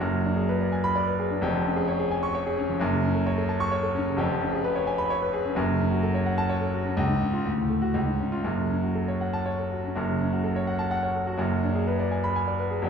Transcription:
0.00 F#1 F#2
0.13 F#3
0.24 D4
0.37 G#4
0.49 B4
0.60 D5
0.72 G#5
0.84 B5
0.96 D5
1.07 B4
1.19 G#4
1.31 D4
1.41 F1 F2
1.54 F3
1.65 C#4
1.76 G#4
1.88 C#5
2.00 G#4
2.11 G#5
2.23 C#6
2.35 C#5
2.46 G#4
2.57 C#4
2.69 F3
2.80 F#1 F#2
2.92 C#3
3.04 C#4
3.15 A4
3.27 C#5
3.38 A4
3.49 A5
3.60 C#6
3.71 C#5
3.83 A4
3.95 C#4
4.07 C#3
4.17 F1 F2
4.29 F3
4.40 C#4
4.52 G#4
4.64 B4
4.75 C#5
4.87 G#5
4.98 B5
5.10 C#5
5.22 B4
5.33 G#4
5.46 C#4
5.55 F#1 F#2
5.68 C#3
5.79 C#4
5.91 F#4
6.03 A4
6.14 C#5
6.26 F#5
6.38 A5
6.49 C#5
6.62 A4
6.73 F#4
6.85 C#4
6.97 C#2
7.09 G#2
7.21 C#4
7.33 F4
7.46 D2
7.58 A2
7.70 A3
7.82 F#4
7.94 C#2
8.07 G#2
8.20 C#4
8.32 F4
8.44 F#1 F#2
8.57 C#3
8.70 C#4
8.83 F#4
8.95 A4
9.08 C#5
9.21 F#5
9.33 A5
9.46 C#5
9.59 A4
9.71 F#4
9.84 C#4
9.96 F#1 F#2
10.08 C#3
10.20 C#4
10.33 F#4
10.44 A4
10.56 C#5
10.67 F#5
10.79 A5
10.91 F#5
11.03 C#5
11.15 A4
11.27 F#4
11.38 F#1 F#2
11.51 F#3
11.63 D4
11.75 G#4
11.87 B4
12.00 D5
12.11 G#5
12.24 B5
12.36 G#5
12.48 D5
12.59 B4
12.71 G#4
12.82 F1 F2

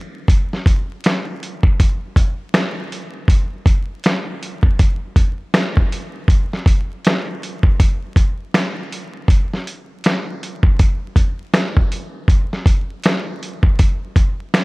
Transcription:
0.28 kick, closed hi-hat
0.53 snare
0.66 kick, closed hi-hat
1.04 finger snap, snare, closed hi-hat
1.43 closed hi-hat
1.63 kick
1.80 kick, closed hi-hat
2.16 kick, closed hi-hat
2.54 finger snap, snare, closed hi-hat
2.92 closed hi-hat
3.28 kick, closed hi-hat
3.66 kick, closed hi-hat
4.04 finger snap, snare, closed hi-hat
4.43 closed hi-hat
4.63 kick
4.79 kick, closed hi-hat
5.16 kick, closed hi-hat
5.54 finger snap, snare, closed hi-hat
5.77 kick
5.92 closed hi-hat
6.28 kick, closed hi-hat
6.53 snare
6.66 kick, closed hi-hat
7.04 finger snap, snare, closed hi-hat
7.43 closed hi-hat
7.63 kick
7.80 kick, closed hi-hat
8.16 kick, closed hi-hat
8.54 finger snap, snare, closed hi-hat
8.92 closed hi-hat
9.28 kick, closed hi-hat
9.54 snare
9.67 closed hi-hat
10.04 finger snap, snare, closed hi-hat
10.43 closed hi-hat
10.63 kick
10.79 kick, closed hi-hat
11.16 kick, closed hi-hat
11.54 finger snap, snare, closed hi-hat
11.77 kick
11.92 closed hi-hat
12.28 kick, closed hi-hat
12.53 snare
12.66 kick, closed hi-hat
13.04 finger snap, snare, closed hi-hat
13.43 closed hi-hat
13.63 kick
13.79 kick, closed hi-hat
14.16 kick, closed hi-hat
14.54 finger snap, snare, closed hi-hat

